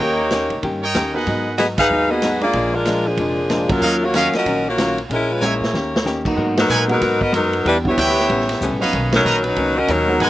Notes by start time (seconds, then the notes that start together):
Already playing: A#4 C#5 D#5 G5
0.00 D#2 D#3 A#3 C#4 D#4 G4 C#5
0.31 D#3 A#3 C#4 G4, snare, hi-hat pedal, ride
0.50 C#2, ride
0.62 G2 D#3 A#3 C#4 G4, kick, ride
0.83 A#4 C#5 D#5 G5
0.94 D#2 D#3 A#3 C#4 G4, snare, hi-hat pedal, ride
1.13 B3 D#4 F#4 G#4 A#4 B4 D#5 F#5
1.27 G#2 F#3 B3 D#4, kick, ride
1.57 G#2 F#3 B3 F#4 G#4 D#5, snare, hi-hat pedal, ride
1.61 D#4
1.78 D#4 G#4 B4 D#5 F5 F#5, kick, ride
1.89 D#2 G#2 F#3 B3 D#4
2.09 A#3 B3 D#4 F#4 G#4 D#5
2.22 G#2 F#3 B3 D#4, snare, hi-hat pedal, ride
2.41 G#3 A#3 D4 F4 G#4 D5, ride
2.53 A#1 A#2 F3 G#3 D4, kick, ride
2.74 G#3 D4 F4 A#4
2.85 A#2 F3 G#3 D4, snare, hi-hat pedal, ride
3.07 F3 A#3 D4 G#4
3.17 F1 A#2 F3 G#3, kick, ride
3.21 D4
3.50 A#2 F3 G#3 D4, snare, hi-hat pedal, ride
3.68 F#3 A#3 C#4 F4 A#4, kick, ride
3.81 D#2 D#3 F#3 C#4 F#4 C#5 D#5 F5
3.85 F4
4.04 A#3 F4 F#4 C#5
4.14 D#3 F#3 A#3 C#4 F4 F#4 A#4 C#5 D#5 F5, snare, hi-hat pedal, ride
4.33 C#4 F#4 A#4 D#5, muted upright bass stroke, snare, ride
4.46 A#1 D#3 F#3 C#4 F4, kick, ride
4.68 A#3 F4 F#4 C#5
4.78 D#3 F#3 C#4 F4, snare, hi-hat pedal, ride
4.98 ride
5.09 A#1 A#2 G#3 C#4 E4 A#4, kick, ride
5.13 G#3 E4
5.32 G#3 C#4 F4 B4
5.41 A#2 G#3 C#4 E4 G#4 A#4 C#5 E5 G#5, hi-hat pedal, high tom
5.45 A#3
5.61 A#2, snare
5.73 D#2 D#3 A#3 C#4 G4, snare
5.96 snare
6.05 D#3 A#3 C#4 G4, snare, hi-hat pedal
6.25 G#2 F#3 A#3 B3 D#4, kick, crash
6.36 G#2 G#3 B3 F#4 A#4, kick
6.57 F#3 B3 D#4 A#4, snare, ride
6.68 A#2 G#3 B3 F#4 A#4 B4 F#5 G#5, hi-hat pedal
6.88 F#3 G#3 A#3 B3 D#4 F#4, ride
6.92 A#4 B4
7.00 G#2 G#3 B3 F#4 A#4, kick, snare, ride
7.21 B3 F#4 A#4 D#5, kick
7.32 F#2 F#3 G#3 B3 D#4 F#4 A#4, kick, hi-hat pedal, ride
7.53 ride
7.65 E2 E3 G3 B3 D4 E4 G4 B4, kick, ride
7.84 G3 B3 D4 E4 F#4, kick
7.89 B3 E4 G4 C#5
7.97 D2 E3 B3 D4 G4 B4 E5 G5, kick, hi-hat pedal, ride
8.09 snare
8.19 snare
8.29 A1 A2 G3 B3 C#4, kick, ride
8.41 snare
8.49 snare, ride
8.61 C#2 A2 G3 B3 C#4, kick, hi-hat pedal
8.72 A1
8.79 F#3 B3 C#4 D#4 F#4 B4 C#5 D#5 F5
8.84 G1
8.93 B1 B2 D#3 A#3 C#4, kick, ride
9.12 F#3 C#4 D#4 A#4, snare, ride
9.25 A#1 B2 D#3 A#3 C#4 B4 C#5 D#5 A#5, hi-hat pedal
9.44 F#3 C#4 D#4 B4, ride
9.56 C#2 B2 D#3 A#3 C#4, kick, ride
9.77 C#4 F#4 A#4 D#5
9.88 D#2 B2 D#3 F#3 A#3 C#4 D#4 A#4, kick, hi-hat pedal, ride
10.08 G#3 B3 D#4 F#4 A#4
10.20 G#2 F#3 G#3 B3 D#4 F#4 B4 D#5 F#5 G#5, kick, ride